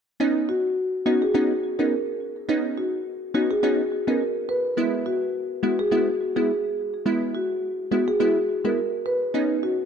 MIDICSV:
0, 0, Header, 1, 3, 480
1, 0, Start_track
1, 0, Key_signature, 5, "major"
1, 0, Tempo, 571429
1, 171, Time_signature, 4, 2, 24, 8
1, 8277, End_track
2, 0, Start_track
2, 0, Title_t, "Marimba"
2, 0, Program_c, 0, 12
2, 411, Note_on_c, 0, 66, 78
2, 525, Note_off_c, 0, 66, 0
2, 890, Note_on_c, 0, 66, 74
2, 1005, Note_off_c, 0, 66, 0
2, 1025, Note_on_c, 0, 68, 74
2, 1115, Note_off_c, 0, 68, 0
2, 1131, Note_on_c, 0, 66, 80
2, 1245, Note_off_c, 0, 66, 0
2, 1505, Note_on_c, 0, 70, 72
2, 1595, Note_off_c, 0, 70, 0
2, 2332, Note_on_c, 0, 66, 65
2, 2446, Note_off_c, 0, 66, 0
2, 2811, Note_on_c, 0, 66, 76
2, 2926, Note_off_c, 0, 66, 0
2, 2945, Note_on_c, 0, 68, 80
2, 3035, Note_off_c, 0, 68, 0
2, 3051, Note_on_c, 0, 66, 81
2, 3165, Note_off_c, 0, 66, 0
2, 3426, Note_on_c, 0, 70, 75
2, 3515, Note_off_c, 0, 70, 0
2, 3771, Note_on_c, 0, 71, 79
2, 3885, Note_off_c, 0, 71, 0
2, 4250, Note_on_c, 0, 66, 77
2, 4365, Note_off_c, 0, 66, 0
2, 4731, Note_on_c, 0, 66, 78
2, 4845, Note_off_c, 0, 66, 0
2, 4865, Note_on_c, 0, 68, 76
2, 4955, Note_off_c, 0, 68, 0
2, 4971, Note_on_c, 0, 66, 79
2, 5085, Note_off_c, 0, 66, 0
2, 5345, Note_on_c, 0, 68, 75
2, 5435, Note_off_c, 0, 68, 0
2, 6171, Note_on_c, 0, 66, 70
2, 6285, Note_off_c, 0, 66, 0
2, 6650, Note_on_c, 0, 66, 74
2, 6765, Note_off_c, 0, 66, 0
2, 6785, Note_on_c, 0, 68, 81
2, 6875, Note_off_c, 0, 68, 0
2, 6890, Note_on_c, 0, 66, 83
2, 7005, Note_off_c, 0, 66, 0
2, 7264, Note_on_c, 0, 70, 75
2, 7354, Note_off_c, 0, 70, 0
2, 7609, Note_on_c, 0, 71, 77
2, 7724, Note_off_c, 0, 71, 0
2, 8090, Note_on_c, 0, 66, 80
2, 8205, Note_off_c, 0, 66, 0
2, 8277, End_track
3, 0, Start_track
3, 0, Title_t, "Synth stab"
3, 0, Program_c, 1, 62
3, 167, Note_on_c, 1, 59, 91
3, 170, Note_on_c, 1, 61, 83
3, 173, Note_on_c, 1, 63, 100
3, 615, Note_off_c, 1, 59, 0
3, 616, Note_off_c, 1, 61, 0
3, 618, Note_off_c, 1, 63, 0
3, 888, Note_on_c, 1, 59, 76
3, 891, Note_on_c, 1, 61, 70
3, 893, Note_on_c, 1, 63, 84
3, 1041, Note_off_c, 1, 59, 0
3, 1043, Note_off_c, 1, 61, 0
3, 1044, Note_off_c, 1, 63, 0
3, 1128, Note_on_c, 1, 59, 94
3, 1131, Note_on_c, 1, 61, 86
3, 1133, Note_on_c, 1, 63, 101
3, 1281, Note_off_c, 1, 59, 0
3, 1283, Note_off_c, 1, 61, 0
3, 1284, Note_off_c, 1, 63, 0
3, 1502, Note_on_c, 1, 59, 72
3, 1505, Note_on_c, 1, 61, 68
3, 1507, Note_on_c, 1, 63, 84
3, 1632, Note_off_c, 1, 59, 0
3, 1633, Note_off_c, 1, 61, 0
3, 1634, Note_off_c, 1, 63, 0
3, 2088, Note_on_c, 1, 59, 90
3, 2090, Note_on_c, 1, 61, 86
3, 2093, Note_on_c, 1, 63, 103
3, 2535, Note_off_c, 1, 59, 0
3, 2537, Note_off_c, 1, 61, 0
3, 2538, Note_off_c, 1, 63, 0
3, 2808, Note_on_c, 1, 59, 75
3, 2810, Note_on_c, 1, 61, 70
3, 2813, Note_on_c, 1, 63, 87
3, 2961, Note_off_c, 1, 59, 0
3, 2962, Note_off_c, 1, 61, 0
3, 2964, Note_off_c, 1, 63, 0
3, 3048, Note_on_c, 1, 59, 96
3, 3051, Note_on_c, 1, 61, 86
3, 3053, Note_on_c, 1, 63, 105
3, 3201, Note_off_c, 1, 59, 0
3, 3203, Note_off_c, 1, 61, 0
3, 3204, Note_off_c, 1, 63, 0
3, 3422, Note_on_c, 1, 59, 74
3, 3425, Note_on_c, 1, 61, 69
3, 3427, Note_on_c, 1, 63, 85
3, 3552, Note_off_c, 1, 59, 0
3, 3553, Note_off_c, 1, 61, 0
3, 3554, Note_off_c, 1, 63, 0
3, 4008, Note_on_c, 1, 56, 92
3, 4010, Note_on_c, 1, 59, 86
3, 4013, Note_on_c, 1, 64, 103
3, 4455, Note_off_c, 1, 56, 0
3, 4456, Note_off_c, 1, 59, 0
3, 4458, Note_off_c, 1, 64, 0
3, 4727, Note_on_c, 1, 56, 78
3, 4730, Note_on_c, 1, 59, 68
3, 4732, Note_on_c, 1, 64, 84
3, 4881, Note_off_c, 1, 56, 0
3, 4882, Note_off_c, 1, 59, 0
3, 4884, Note_off_c, 1, 64, 0
3, 4968, Note_on_c, 1, 56, 90
3, 4970, Note_on_c, 1, 59, 86
3, 4973, Note_on_c, 1, 64, 100
3, 5121, Note_off_c, 1, 56, 0
3, 5122, Note_off_c, 1, 59, 0
3, 5124, Note_off_c, 1, 64, 0
3, 5342, Note_on_c, 1, 56, 73
3, 5344, Note_on_c, 1, 59, 67
3, 5347, Note_on_c, 1, 64, 79
3, 5472, Note_off_c, 1, 56, 0
3, 5473, Note_off_c, 1, 59, 0
3, 5474, Note_off_c, 1, 64, 0
3, 5928, Note_on_c, 1, 56, 89
3, 5930, Note_on_c, 1, 59, 83
3, 5932, Note_on_c, 1, 64, 101
3, 6375, Note_off_c, 1, 56, 0
3, 6377, Note_off_c, 1, 59, 0
3, 6378, Note_off_c, 1, 64, 0
3, 6647, Note_on_c, 1, 56, 78
3, 6650, Note_on_c, 1, 59, 69
3, 6652, Note_on_c, 1, 64, 84
3, 6801, Note_off_c, 1, 56, 0
3, 6802, Note_off_c, 1, 59, 0
3, 6803, Note_off_c, 1, 64, 0
3, 6887, Note_on_c, 1, 56, 88
3, 6890, Note_on_c, 1, 59, 85
3, 6892, Note_on_c, 1, 64, 103
3, 7041, Note_off_c, 1, 56, 0
3, 7042, Note_off_c, 1, 59, 0
3, 7043, Note_off_c, 1, 64, 0
3, 7261, Note_on_c, 1, 56, 76
3, 7263, Note_on_c, 1, 59, 67
3, 7266, Note_on_c, 1, 64, 78
3, 7391, Note_off_c, 1, 56, 0
3, 7392, Note_off_c, 1, 59, 0
3, 7394, Note_off_c, 1, 64, 0
3, 7846, Note_on_c, 1, 59, 91
3, 7849, Note_on_c, 1, 61, 82
3, 7851, Note_on_c, 1, 63, 97
3, 8277, Note_off_c, 1, 59, 0
3, 8277, Note_off_c, 1, 61, 0
3, 8277, Note_off_c, 1, 63, 0
3, 8277, End_track
0, 0, End_of_file